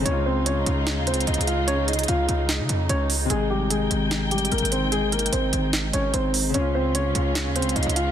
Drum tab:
HH |x-----------------------x-----------x-----------x-----------x---x---x---x---x---x---x-----------|x-----------x--x--x--x--x-----------x-----------x-----------x-----------x-----------o-----------|x-----------------------x-----------x-----------x-----------x---x---x---x---x---x---x-----------|x-----------x---x---x---x-----------x-----------x-----------x-----------x-----------o-----------|
SD |------------------------------------------------o-----------------------------------------------|------------------------------------------------o-----------------------------------------------|------------------------------------------------o-----------------------------------------------|------------------------------------------------o-----------------------------------------------|

HH |x-----------------------x-----------x-----------x-----------x---x---x---x---x---x---x-----------|
SD |------------------------------------------------o-----------------------------------------------|